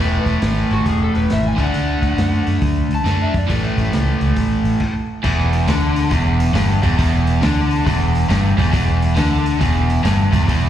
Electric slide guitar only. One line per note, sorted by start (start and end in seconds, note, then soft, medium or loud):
0.00 0.26 B4 medium
0.73 0.86 F#4 medium
0.89 1.01 G#4 medium
1.03 1.16 A4 medium
1.16 1.30 B4 medium
1.32 1.45 E5 medium
1.47 1.60 G#5 medium
1.63 2.46 F#5 medium
2.95 3.21 A5 medium
3.22 3.35 E5 medium
3.38 3.50 D5 medium